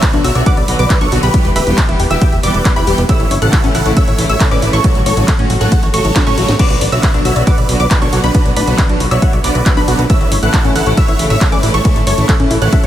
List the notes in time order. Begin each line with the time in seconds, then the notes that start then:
Already playing: C#5 E5 E6
0.02 B4, kick, clap, closed hi-hat, ride
0.13 B1 D3 F#3 B3 D4 F#4, closed hi-hat
0.24 B1 F#4 C#5 E5 E6, open hi-hat
0.35 B1 D3 F#3 B3 F#4 D5, closed hi-hat
0.46 B4 D5 F#5 D6, kick, closed hi-hat, ride
0.57 B1 D5, closed hi-hat
0.68 B1 D3 F#3 B3 F#4, open hi-hat
0.79 B1 B4 D5 D6, closed hi-hat
0.90 D3 F#3 B3 F#4 B4, kick, clap, closed hi-hat, ride
1.01 B1 D4 A4 C#5 C#6, closed hi-hat
1.12 B1 D3 F#3 B3 F#4, open hi-hat
1.23 B1 G4 B4 B5, closed hi-hat
1.34 E3 G3 B3 G4, kick, closed hi-hat, ride
1.45 E1, closed hi-hat
1.56 D1 G4 B4 E5 B5, open hi-hat
1.67 E1 E3 G3 B3 G4, closed hi-hat
1.78 B4, kick, clap, closed hi-hat, ride
1.89 E1 E3 G3 B3 E4 G4, closed hi-hat
2.00 E1 G4, open hi-hat
2.10 E1 E3 G3 B3 G4 E5 E6, closed hi-hat
2.21 G5, kick, closed hi-hat, ride
2.32 E1 E5, closed hi-hat
2.43 E1 E3 G3 B3 G4 B4 D5 D6, open hi-hat
2.54 E1, closed hi-hat
2.65 E3 G3 B3 G4 B4, kick, clap, closed hi-hat, ride
2.76 E1 E4 G4 B4 B5, closed hi-hat
2.87 E1 E3 G3 B3 G4, open hi-hat
2.98 E1, closed hi-hat
3.09 C#3 E3 A3 E4 C#5 E5 E6, kick, closed hi-hat, ride
3.20 A1, closed hi-hat
3.31 G1 C#5, open hi-hat
3.42 A1 C#3 E3 A3 E4 A4 F#5 F#6, closed hi-hat
3.53 A4, kick, clap, closed hi-hat, ride
3.64 A1 C#3 E3 A3 C#4 E4, closed hi-hat
3.75 A1 E4 A4 F#5 F#6, open hi-hat
3.86 A1 C#3 E3 A3 E4 C#5, closed hi-hat
3.97 C#5 E5 E6, kick, closed hi-hat, ride
4.08 A1 C#5, closed hi-hat
4.19 A1 C#3 E3 A3 E4, open hi-hat
4.29 A1 C#5 E5 E6, closed hi-hat
4.40 C#3 E3 A3 E4 A4, kick, clap, closed hi-hat, ride
4.51 A1 C#4 B4 D5 D6, closed hi-hat
4.62 A1 C#3 E3 A3 E4, open hi-hat
4.73 A1 A4 C#5 C#6, closed hi-hat
4.84 C#3 F#3 A3 F#4, kick, closed hi-hat, ride
4.95 A1, closed hi-hat
5.06 A1 A4 C#5 C#6, open hi-hat
5.17 A1 C#3 F#3 A3 F#4, closed hi-hat
5.28 A4, kick, clap, closed hi-hat, ride
5.39 A1 C#3 F#3 A3 C#4 F#4, closed hi-hat
5.50 A1 F#4, open hi-hat
5.61 A1 C#3 F#3 A3 F#4 A4 C#5 F#5 F#6, closed hi-hat
5.72 F#5, kick, closed hi-hat, ride
5.83 A1 C#5, closed hi-hat
5.94 A1 C#3 F#3 A3 F#4 A4 C#5 C#6, open hi-hat
6.05 A1, closed hi-hat
6.16 C#3 F#3 A3 F#4 A4, kick, snare, clap, closed hi-hat, ride
6.27 A2 C#4 A4 C#5 C#6, closed hi-hat
6.38 A1 C#3 F#3 A3 F#4, open hi-hat
6.48 A1, snare, closed hi-hat
6.59 D3 F#3 B3 F#4 B4 D5 D6, kick, closed hi-hat, crash, ride
6.70 B1, closed hi-hat
6.81 A1 D5, open hi-hat
6.92 B1 D3 F#3 B3 F#4 C#5 E5 E6, closed hi-hat
7.03 B4, kick, clap, closed hi-hat, ride
7.14 B1 D3 F#3 B3 D4 F#4, closed hi-hat
7.25 B1 F#4 C#5 E5 E6, open hi-hat
7.36 B1 D3 F#3 B3 F#4 D5, closed hi-hat
7.47 B4 D5 F#5 D6, kick, closed hi-hat, ride
7.58 B1 D5, closed hi-hat
7.69 B1 D3 F#3 B3 F#4, open hi-hat
7.80 B1 B4 D5 D6, closed hi-hat
7.91 D3 F#3 B3 F#4 B4, kick, clap, closed hi-hat, ride
8.02 B1 D4 A4 C#5 C#6, closed hi-hat
8.13 B1 D3 F#3 B3 F#4, open hi-hat
8.24 B1 D4 B4 B5, closed hi-hat
8.34 D3 F#3 B3 F#4, kick, closed hi-hat, ride
8.45 B1, closed hi-hat
8.56 A1 D4 B4 D5 B5, open hi-hat
8.67 B1 D3 F#3 B3 F#4, closed hi-hat
8.78 B4, kick, clap, closed hi-hat, ride
8.89 B1 D3 F#3 B3 D4 F#4, closed hi-hat
9.00 B1 F#4, open hi-hat
9.11 B1 D3 F#3 B3 F#4 C#5 D5 E5 E6, closed hi-hat
9.22 F#5, kick, closed hi-hat, ride
9.33 B1 D5, closed hi-hat
9.44 B1 D3 F#3 B3 F#4 B4 D5 D6, open hi-hat
9.55 B1, closed hi-hat
9.66 D3 F#3 B3 F#4 B4, kick, clap, closed hi-hat, ride
9.77 B1 D4 B4 B5, closed hi-hat
9.88 B1 D3 F#3 B3 F#4, open hi-hat
9.99 B1, closed hi-hat
10.10 C#3 E3 A3 E4 C#5 E5 E6, kick, closed hi-hat, ride
10.21 A1, closed hi-hat
10.32 G1 C#5, open hi-hat
10.43 A1 C#3 E3 A3 E4 A4 F#5 F#6, closed hi-hat
10.54 A4, kick, clap, closed hi-hat, ride
10.64 A1 C#3 E3 A3 C#4 E4, closed hi-hat
10.75 A1 E4 A4 F#5 F#6, open hi-hat
10.86 A1 C#3 E3 A3 E4 C#5, closed hi-hat
10.97 C#5 E5 E6, kick, closed hi-hat, ride
11.08 A1 C#5, closed hi-hat
11.19 A1 C#3 E3 A3 E4, open hi-hat
11.30 A1 C#5 E5 E6, closed hi-hat
11.41 C#3 E3 A3 E4 A4, kick, clap, closed hi-hat, ride
11.52 A1 C#4 B4 D5 D6, closed hi-hat
11.63 A1 C#3 E3 A3 E4, open hi-hat
11.74 A1 A4 C#5 C#6, closed hi-hat
11.85 C#3 E3 A3 E4, kick, closed hi-hat, ride
11.96 A1, closed hi-hat
12.07 G1 A4 C#5 C#6, open hi-hat
12.18 A1 C#3 E3 A3 E4, closed hi-hat
12.29 A4, kick, clap, closed hi-hat, ride
12.40 A1 C#3 E3 A3 C#4 E4, closed hi-hat
12.51 A1 E4, open hi-hat
12.62 A1 C#3 E3 A3 E4 A4 C#5 F#5 F#6, closed hi-hat
12.73 E5, kick, closed hi-hat, ride
12.83 A1 C#5, closed hi-hat